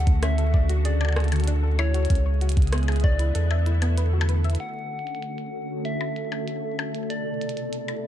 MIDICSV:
0, 0, Header, 1, 7, 480
1, 0, Start_track
1, 0, Tempo, 625000
1, 1614, Time_signature, 4, 2, 24, 8
1, 6198, End_track
2, 0, Start_track
2, 0, Title_t, "Soft synth lead"
2, 0, Program_c, 0, 80
2, 0, Note_on_c, 0, 78, 125
2, 175, Note_on_c, 0, 76, 110
2, 186, Note_off_c, 0, 78, 0
2, 654, Note_on_c, 0, 74, 90
2, 666, Note_off_c, 0, 76, 0
2, 1134, Note_off_c, 0, 74, 0
2, 1374, Note_on_c, 0, 73, 124
2, 2063, Note_off_c, 0, 73, 0
2, 2334, Note_on_c, 0, 74, 127
2, 3263, Note_off_c, 0, 74, 0
2, 3533, Note_on_c, 0, 78, 125
2, 4494, Note_on_c, 0, 76, 114
2, 4506, Note_off_c, 0, 78, 0
2, 5453, Note_on_c, 0, 74, 112
2, 5465, Note_off_c, 0, 76, 0
2, 6198, Note_off_c, 0, 74, 0
2, 6198, End_track
3, 0, Start_track
3, 0, Title_t, "Synth arpeggio sound"
3, 0, Program_c, 1, 84
3, 54, Note_on_c, 1, 50, 74
3, 166, Note_off_c, 1, 50, 0
3, 174, Note_on_c, 1, 61, 84
3, 286, Note_off_c, 1, 61, 0
3, 294, Note_on_c, 1, 69, 74
3, 406, Note_off_c, 1, 69, 0
3, 414, Note_on_c, 1, 74, 77
3, 459, Note_off_c, 1, 74, 0
3, 533, Note_on_c, 1, 66, 75
3, 608, Note_off_c, 1, 66, 0
3, 654, Note_on_c, 1, 68, 84
3, 699, Note_off_c, 1, 68, 0
3, 774, Note_on_c, 1, 74, 79
3, 849, Note_off_c, 1, 74, 0
3, 894, Note_on_c, 1, 68, 74
3, 969, Note_off_c, 1, 68, 0
3, 1014, Note_on_c, 1, 50, 77
3, 1126, Note_off_c, 1, 50, 0
3, 1134, Note_on_c, 1, 62, 100
3, 1246, Note_off_c, 1, 62, 0
3, 1254, Note_on_c, 1, 69, 73
3, 1366, Note_off_c, 1, 69, 0
3, 1374, Note_on_c, 1, 64, 100
3, 1486, Note_off_c, 1, 64, 0
3, 1494, Note_on_c, 1, 66, 79
3, 1568, Note_off_c, 1, 66, 0
3, 1614, Note_on_c, 1, 61, 83
3, 1658, Note_off_c, 1, 61, 0
3, 1734, Note_on_c, 1, 73, 73
3, 1808, Note_off_c, 1, 73, 0
3, 1854, Note_on_c, 1, 66, 79
3, 1929, Note_off_c, 1, 66, 0
3, 1974, Note_on_c, 1, 49, 74
3, 2086, Note_off_c, 1, 49, 0
3, 2094, Note_on_c, 1, 59, 83
3, 2206, Note_off_c, 1, 59, 0
3, 2214, Note_on_c, 1, 68, 74
3, 2326, Note_off_c, 1, 68, 0
3, 2333, Note_on_c, 1, 73, 79
3, 2378, Note_off_c, 1, 73, 0
3, 2454, Note_on_c, 1, 64, 77
3, 2528, Note_off_c, 1, 64, 0
3, 2574, Note_on_c, 1, 69, 87
3, 2619, Note_off_c, 1, 69, 0
3, 2694, Note_on_c, 1, 76, 82
3, 2768, Note_off_c, 1, 76, 0
3, 2814, Note_on_c, 1, 64, 75
3, 2926, Note_off_c, 1, 64, 0
3, 2933, Note_on_c, 1, 59, 100
3, 3008, Note_off_c, 1, 59, 0
3, 3053, Note_on_c, 1, 71, 81
3, 3128, Note_off_c, 1, 71, 0
3, 3173, Note_on_c, 1, 66, 76
3, 3248, Note_off_c, 1, 66, 0
3, 3294, Note_on_c, 1, 71, 74
3, 3339, Note_off_c, 1, 71, 0
3, 3414, Note_on_c, 1, 76, 79
3, 3488, Note_off_c, 1, 76, 0
3, 6198, End_track
4, 0, Start_track
4, 0, Title_t, "String machine"
4, 0, Program_c, 2, 50
4, 0, Note_on_c, 2, 49, 73
4, 0, Note_on_c, 2, 50, 80
4, 0, Note_on_c, 2, 57, 75
4, 0, Note_on_c, 2, 66, 71
4, 0, Note_on_c, 2, 69, 86
4, 1583, Note_off_c, 2, 57, 0
4, 1583, Note_off_c, 2, 69, 0
4, 1595, Note_off_c, 2, 49, 0
4, 1595, Note_off_c, 2, 50, 0
4, 1595, Note_off_c, 2, 66, 0
4, 1612, Note_on_c, 2, 49, 76
4, 1612, Note_on_c, 2, 59, 74
4, 1613, Note_on_c, 2, 56, 71
4, 1613, Note_on_c, 2, 64, 77
4, 1613, Note_on_c, 2, 68, 88
4, 2563, Note_off_c, 2, 49, 0
4, 2564, Note_off_c, 2, 56, 0
4, 2564, Note_off_c, 2, 68, 0
4, 2574, Note_on_c, 2, 50, 83
4, 2574, Note_on_c, 2, 57, 76
4, 2574, Note_on_c, 2, 69, 89
4, 3514, Note_off_c, 2, 59, 0
4, 3514, Note_off_c, 2, 64, 0
4, 3524, Note_off_c, 2, 50, 0
4, 3524, Note_off_c, 2, 57, 0
4, 3524, Note_off_c, 2, 69, 0
4, 3533, Note_on_c, 2, 50, 78
4, 3533, Note_on_c, 2, 57, 72
4, 3533, Note_on_c, 2, 61, 74
4, 3533, Note_on_c, 2, 66, 72
4, 3533, Note_on_c, 2, 69, 88
4, 5434, Note_off_c, 2, 50, 0
4, 5434, Note_off_c, 2, 61, 0
4, 5434, Note_off_c, 2, 66, 0
4, 5452, Note_on_c, 2, 47, 71
4, 5452, Note_on_c, 2, 48, 83
4, 5452, Note_on_c, 2, 64, 73
4, 6198, Note_off_c, 2, 47, 0
4, 6198, Note_off_c, 2, 48, 0
4, 6198, Note_off_c, 2, 57, 0
4, 6198, Note_off_c, 2, 64, 0
4, 6198, Note_off_c, 2, 69, 0
4, 6198, End_track
5, 0, Start_track
5, 0, Title_t, "Sub bass"
5, 0, Program_c, 3, 38
5, 0, Note_on_c, 3, 38, 92
5, 1590, Note_off_c, 3, 38, 0
5, 1614, Note_on_c, 3, 37, 90
5, 2550, Note_off_c, 3, 37, 0
5, 2573, Note_on_c, 3, 40, 88
5, 3509, Note_off_c, 3, 40, 0
5, 6198, End_track
6, 0, Start_track
6, 0, Title_t, "Percussion blips"
6, 774, Note_on_c, 9, 76, 61
6, 804, Note_off_c, 9, 76, 0
6, 804, Note_on_c, 9, 76, 47
6, 834, Note_off_c, 9, 76, 0
6, 834, Note_on_c, 9, 76, 41
6, 864, Note_off_c, 9, 76, 0
6, 864, Note_on_c, 9, 76, 31
6, 941, Note_off_c, 9, 76, 0
6, 1014, Note_on_c, 9, 76, 53
6, 1091, Note_off_c, 9, 76, 0
6, 1374, Note_on_c, 9, 76, 84
6, 1450, Note_off_c, 9, 76, 0
6, 2213, Note_on_c, 9, 76, 64
6, 2290, Note_off_c, 9, 76, 0
6, 2693, Note_on_c, 9, 76, 63
6, 2770, Note_off_c, 9, 76, 0
6, 2933, Note_on_c, 9, 76, 57
6, 3010, Note_off_c, 9, 76, 0
6, 3233, Note_on_c, 9, 76, 88
6, 3310, Note_off_c, 9, 76, 0
6, 4613, Note_on_c, 9, 76, 59
6, 4690, Note_off_c, 9, 76, 0
6, 4853, Note_on_c, 9, 76, 51
6, 4930, Note_off_c, 9, 76, 0
6, 5214, Note_on_c, 9, 76, 83
6, 5291, Note_off_c, 9, 76, 0
6, 6054, Note_on_c, 9, 76, 58
6, 6131, Note_off_c, 9, 76, 0
6, 6198, End_track
7, 0, Start_track
7, 0, Title_t, "Drums"
7, 54, Note_on_c, 9, 36, 114
7, 54, Note_on_c, 9, 42, 52
7, 130, Note_off_c, 9, 36, 0
7, 131, Note_off_c, 9, 42, 0
7, 174, Note_on_c, 9, 37, 115
7, 174, Note_on_c, 9, 42, 67
7, 251, Note_off_c, 9, 37, 0
7, 251, Note_off_c, 9, 42, 0
7, 294, Note_on_c, 9, 42, 36
7, 370, Note_off_c, 9, 42, 0
7, 414, Note_on_c, 9, 36, 109
7, 491, Note_off_c, 9, 36, 0
7, 534, Note_on_c, 9, 42, 50
7, 611, Note_off_c, 9, 42, 0
7, 654, Note_on_c, 9, 42, 62
7, 730, Note_off_c, 9, 42, 0
7, 894, Note_on_c, 9, 37, 113
7, 894, Note_on_c, 9, 42, 16
7, 924, Note_off_c, 9, 42, 0
7, 924, Note_on_c, 9, 42, 18
7, 953, Note_off_c, 9, 42, 0
7, 953, Note_on_c, 9, 42, 21
7, 971, Note_off_c, 9, 37, 0
7, 984, Note_off_c, 9, 42, 0
7, 984, Note_on_c, 9, 42, 23
7, 1014, Note_off_c, 9, 42, 0
7, 1014, Note_on_c, 9, 42, 52
7, 1044, Note_off_c, 9, 42, 0
7, 1044, Note_on_c, 9, 42, 26
7, 1074, Note_off_c, 9, 42, 0
7, 1074, Note_on_c, 9, 42, 30
7, 1103, Note_off_c, 9, 42, 0
7, 1103, Note_on_c, 9, 42, 33
7, 1133, Note_off_c, 9, 42, 0
7, 1133, Note_on_c, 9, 42, 62
7, 1210, Note_off_c, 9, 42, 0
7, 1493, Note_on_c, 9, 42, 51
7, 1570, Note_off_c, 9, 42, 0
7, 1574, Note_on_c, 9, 42, 41
7, 1614, Note_off_c, 9, 42, 0
7, 1614, Note_on_c, 9, 36, 99
7, 1614, Note_on_c, 9, 42, 65
7, 1654, Note_off_c, 9, 42, 0
7, 1654, Note_on_c, 9, 42, 33
7, 1690, Note_off_c, 9, 36, 0
7, 1731, Note_off_c, 9, 42, 0
7, 1854, Note_on_c, 9, 42, 49
7, 1914, Note_off_c, 9, 42, 0
7, 1914, Note_on_c, 9, 42, 67
7, 1934, Note_off_c, 9, 42, 0
7, 1934, Note_on_c, 9, 42, 38
7, 1974, Note_off_c, 9, 42, 0
7, 1974, Note_on_c, 9, 36, 114
7, 1974, Note_on_c, 9, 42, 49
7, 2014, Note_off_c, 9, 42, 0
7, 2014, Note_on_c, 9, 42, 41
7, 2050, Note_off_c, 9, 36, 0
7, 2053, Note_off_c, 9, 42, 0
7, 2053, Note_on_c, 9, 42, 34
7, 2093, Note_off_c, 9, 42, 0
7, 2093, Note_on_c, 9, 37, 121
7, 2093, Note_on_c, 9, 42, 72
7, 2134, Note_off_c, 9, 42, 0
7, 2134, Note_on_c, 9, 42, 24
7, 2170, Note_off_c, 9, 37, 0
7, 2173, Note_off_c, 9, 42, 0
7, 2173, Note_on_c, 9, 42, 20
7, 2213, Note_off_c, 9, 42, 0
7, 2213, Note_on_c, 9, 42, 18
7, 2243, Note_off_c, 9, 42, 0
7, 2243, Note_on_c, 9, 42, 22
7, 2273, Note_off_c, 9, 42, 0
7, 2273, Note_on_c, 9, 42, 26
7, 2303, Note_off_c, 9, 42, 0
7, 2303, Note_on_c, 9, 42, 32
7, 2334, Note_on_c, 9, 36, 109
7, 2380, Note_off_c, 9, 42, 0
7, 2410, Note_off_c, 9, 36, 0
7, 2453, Note_on_c, 9, 42, 54
7, 2530, Note_off_c, 9, 42, 0
7, 2573, Note_on_c, 9, 42, 66
7, 2650, Note_off_c, 9, 42, 0
7, 2813, Note_on_c, 9, 42, 37
7, 2890, Note_off_c, 9, 42, 0
7, 2933, Note_on_c, 9, 42, 53
7, 3010, Note_off_c, 9, 42, 0
7, 3053, Note_on_c, 9, 42, 65
7, 3130, Note_off_c, 9, 42, 0
7, 3293, Note_on_c, 9, 42, 39
7, 3370, Note_off_c, 9, 42, 0
7, 3414, Note_on_c, 9, 42, 24
7, 3453, Note_off_c, 9, 42, 0
7, 3453, Note_on_c, 9, 42, 35
7, 3493, Note_off_c, 9, 42, 0
7, 3493, Note_on_c, 9, 42, 42
7, 3533, Note_off_c, 9, 42, 0
7, 3533, Note_on_c, 9, 42, 65
7, 3610, Note_off_c, 9, 42, 0
7, 3833, Note_on_c, 9, 42, 29
7, 3893, Note_off_c, 9, 42, 0
7, 3893, Note_on_c, 9, 42, 53
7, 3953, Note_off_c, 9, 42, 0
7, 3953, Note_on_c, 9, 42, 45
7, 4013, Note_off_c, 9, 42, 0
7, 4013, Note_on_c, 9, 42, 67
7, 4089, Note_off_c, 9, 42, 0
7, 4133, Note_on_c, 9, 42, 37
7, 4210, Note_off_c, 9, 42, 0
7, 4493, Note_on_c, 9, 42, 61
7, 4570, Note_off_c, 9, 42, 0
7, 4734, Note_on_c, 9, 42, 36
7, 4810, Note_off_c, 9, 42, 0
7, 4853, Note_on_c, 9, 42, 53
7, 4930, Note_off_c, 9, 42, 0
7, 4973, Note_on_c, 9, 42, 64
7, 5050, Note_off_c, 9, 42, 0
7, 5214, Note_on_c, 9, 42, 38
7, 5291, Note_off_c, 9, 42, 0
7, 5334, Note_on_c, 9, 42, 51
7, 5411, Note_off_c, 9, 42, 0
7, 5454, Note_on_c, 9, 42, 66
7, 5531, Note_off_c, 9, 42, 0
7, 5694, Note_on_c, 9, 42, 51
7, 5754, Note_off_c, 9, 42, 0
7, 5754, Note_on_c, 9, 42, 67
7, 5814, Note_off_c, 9, 42, 0
7, 5814, Note_on_c, 9, 42, 53
7, 5891, Note_off_c, 9, 42, 0
7, 5934, Note_on_c, 9, 42, 67
7, 6011, Note_off_c, 9, 42, 0
7, 6054, Note_on_c, 9, 42, 37
7, 6131, Note_off_c, 9, 42, 0
7, 6198, End_track
0, 0, End_of_file